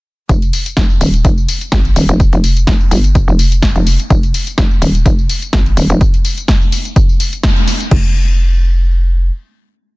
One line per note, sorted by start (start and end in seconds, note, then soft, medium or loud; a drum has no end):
0.29 0.52 F1 loud
0.29 kick loud
0.29 closed hi-hat medium
0.29 tambourine soft
0.42 closed hi-hat soft
0.42 tambourine soft
0.53 open hi-hat loud
0.53 tambourine medium
0.66 closed hi-hat medium
0.66 tambourine soft
0.77 0.99 F1 medium
0.77 kick loud
0.77 snare loud
0.77 closed hi-hat medium
0.77 tambourine soft
0.90 tambourine soft
1.01 1.23 D#1 loud
1.01 open hi-hat loud
1.01 tambourine medium
1.14 closed hi-hat medium
1.14 tambourine soft
1.25 1.47 F1 loud
1.25 kick loud
1.25 closed hi-hat medium
1.25 tambourine soft
1.38 tambourine soft
1.48 open hi-hat loud
1.48 tambourine medium
1.61 closed hi-hat medium
1.61 tambourine soft
1.72 1.94 G#1 loud
1.72 kick loud
1.72 snare loud
1.72 closed hi-hat medium
1.72 tambourine soft
1.85 closed hi-hat soft
1.85 tambourine soft
1.96 2.07 D#1 loud
1.96 open hi-hat loud
1.96 tambourine medium
2.09 2.31 F1 loud
2.09 closed hi-hat medium
2.09 tambourine soft
2.20 kick loud
2.20 closed hi-hat medium
2.20 tambourine soft
2.33 2.66 F1 loud
2.33 closed hi-hat soft
2.33 tambourine soft
2.44 open hi-hat loud
2.44 tambourine medium
2.57 closed hi-hat medium
2.57 tambourine soft
2.67 2.90 F1 medium
2.67 kick loud
2.67 snare loud
2.67 closed hi-hat medium
2.67 tambourine soft
2.81 tambourine soft
2.91 3.26 G1 loud
2.91 open hi-hat loud
2.91 tambourine medium
3.04 closed hi-hat medium
3.04 tambourine soft
3.15 kick loud
3.15 closed hi-hat medium
3.15 tambourine soft
3.28 3.74 F1 loud
3.28 tambourine soft
3.39 open hi-hat loud
3.39 tambourine medium
3.52 closed hi-hat medium
3.52 tambourine soft
3.62 kick loud
3.62 snare loud
3.62 closed hi-hat medium
3.62 tambourine soft
3.76 3.97 F1 loud
3.76 closed hi-hat soft
3.76 tambourine soft
3.87 open hi-hat loud
3.87 tambourine medium
4.00 closed hi-hat medium
4.00 tambourine soft
4.10 4.32 F1 loud
4.10 kick loud
4.10 closed hi-hat medium
4.10 tambourine soft
4.23 closed hi-hat soft
4.23 tambourine soft
4.34 open hi-hat loud
4.34 tambourine medium
4.47 closed hi-hat medium
4.47 tambourine soft
4.58 4.80 F1 loud
4.58 kick loud
4.58 snare loud
4.58 closed hi-hat medium
4.58 tambourine soft
4.71 tambourine soft
4.82 5.04 D#1 loud
4.82 open hi-hat loud
4.82 tambourine medium
4.95 closed hi-hat medium
4.95 tambourine soft
5.06 5.28 F1 loud
5.06 kick loud
5.06 closed hi-hat medium
5.06 tambourine soft
5.19 tambourine soft
5.29 open hi-hat loud
5.29 tambourine medium
5.42 closed hi-hat medium
5.42 tambourine soft
5.53 5.75 G#1 medium
5.53 kick loud
5.53 snare loud
5.53 closed hi-hat medium
5.53 tambourine soft
5.66 closed hi-hat soft
5.66 tambourine soft
5.77 5.88 D#1 loud
5.77 open hi-hat loud
5.77 tambourine medium
5.90 5.99 F1 loud
5.90 closed hi-hat medium
5.90 tambourine soft
6.01 kick loud
6.01 closed hi-hat medium
6.01 tambourine soft
6.14 closed hi-hat soft
6.14 tambourine soft
6.25 open hi-hat loud
6.25 tambourine medium
6.38 closed hi-hat medium
6.38 tambourine soft
6.48 kick loud
6.48 snare loud
6.48 closed hi-hat medium
6.48 tambourine soft
6.62 tambourine soft
6.72 open hi-hat loud
6.72 tambourine medium
6.85 closed hi-hat medium
6.85 tambourine soft
6.96 kick loud
6.96 closed hi-hat medium
6.96 tambourine soft
7.09 tambourine soft
7.20 open hi-hat loud
7.20 tambourine medium
7.33 closed hi-hat medium
7.33 tambourine soft
7.43 kick loud
7.43 snare loud
7.43 closed hi-hat medium
7.43 tambourine soft
7.57 closed hi-hat soft
7.57 tambourine soft
7.68 open hi-hat loud
7.68 tambourine medium
7.80 closed hi-hat medium
7.80 tambourine soft
7.91 9.30 F1 loud
7.91 kick loud
7.91 crash medium